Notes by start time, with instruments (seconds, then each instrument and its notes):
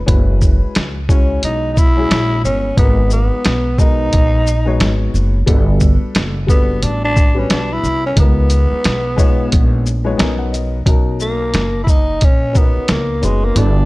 0.06 upright bass F#1, upright piano G#3 C#4 E4 F#4 B4, kick, closed hi-hat
0.41 kick, shaker
0.63 muted upright bass stroke
0.75 upright bass C#2, snare, closed hi-hat
1.09 upright piano G#3 C#4 E4 F#4 C#5, tenor saxophone C#4, kick, shaker
1.43 upright bass B1, tenor saxophone D#4, closed hi-hat
1.73 tenor saxophone D#4
1.77 tenor saxophone E4, kick, shaker
1.96 upright piano G#3 C#4 E4 F#4 G#4
2.11 upright bass A#1, snare, closed hi-hat
2.44 upright bass G1, tenor saxophone C#4, shaker
2.76 upright bass G#1, upright piano G#3 B3 D#4 F#4 A#4, tenor saxophone B3, kick, closed hi-hat
3.10 tenor saxophone B3, shaker
3.32 muted upright bass stroke
3.45 upright bass B1, snare, closed hi-hat
3.78 upright piano G#3 B3 D#4 F#4 A#4, tenor saxophone D#4, kick, shaker
4.13 upright bass A#1, kick, closed hi-hat
4.47 shaker
4.65 upright piano G#3 B3 D#4 F#4 C#5
4.80 upright bass G#1, snare, closed hi-hat
5.14 upright bass F#1, shaker
5.46 upright bass G1, upright piano G3 B3 D4 F#4 A4, kick, closed hi-hat
5.80 kick, shaker
6.02 muted upright bass stroke
6.15 upright bass F#1, snare, closed hi-hat
6.47 upright piano G3 B3 D4 F#4 A4, tenor saxophone B3, kick, shaker
6.83 upright bass A1, tenor saxophone D4, closed hi-hat
7.04 tenor saxophone D4
7.17 kick, shaker
7.35 upright piano G3 B3 D4 F#4 B4
7.39 tenor saxophone C#4
7.50 upright bass B1, tenor saxophone D4, snare, closed hi-hat
7.73 tenor saxophone E4
7.84 upright bass C2, shaker
8.06 tenor saxophone C#4
8.16 upright bass C#2, upright piano G#3 B3 D#4 F4 A#4, tenor saxophone B3, kick, closed hi-hat
8.50 closed hi-hat, shaker
8.72 muted upright bass stroke
8.84 upright bass B1, snare, closed hi-hat
9.16 upright piano G#3 B3 D#4 F4 C#5, kick, shaker
9.52 upright bass A#1, kick, closed hi-hat
9.86 shaker
10.04 upright piano G#3 B3 D#4 F4 C#5
10.17 upright bass B1, upright piano B3 C#4 D#4 F#4 A#4 G#5, snare, closed hi-hat
10.39 upright piano F#5
10.52 upright piano D#5, closed hi-hat, shaker
10.85 upright bass B1, upright piano B2 C#4 D#4 F#4 A#4, kick, closed hi-hat
11.20 tenor saxophone A#3, shaker
11.54 upright bass F#1, snare, closed hi-hat
11.84 tenor saxophone E4, kick
11.88 tenor saxophone D#4, shaker
12.21 upright bass A#1, tenor saxophone C#4, kick, closed hi-hat
12.53 upright piano B3 C#4 D4 F#4 A#4, kick, shaker
12.58 tenor saxophone B3, upright piano D#4
12.76 muted upright bass stroke
12.88 upright bass C#2, tenor saxophone A#3, snare, closed hi-hat
13.21 upright bass F#1, tenor saxophone G#3, upright piano B3 C#4 D#4 F#4 B4, closed hi-hat, shaker
13.45 tenor saxophone A#3
13.55 upright bass G1, upright piano B3 D4 E4 F#4 A4, tenor saxophone D4, closed hi-hat